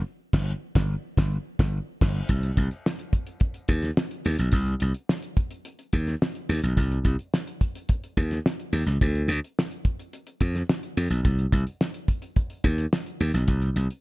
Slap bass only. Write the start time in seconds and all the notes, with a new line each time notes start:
0.33 G1
0.76 G1
1.18 G1
1.59 G1
2.02 G1
2.29 C2
2.57 C2
3.69 D#2
4.25 D#2
4.39 B1
4.53 C2
4.82 C2
5.93 D#2
6.49 D#2
6.63 B1
6.77 C2
7.05 C2
8.17 D#2
8.73 D#2
8.86 C#2
9.02 D2
9.28 D2
10.41 F2
10.97 F2
11.10 B1
11.25 C2
11.53 C2
12.64 D#2
13.20 D#2
13.34 B1
13.48 C2
13.76 C2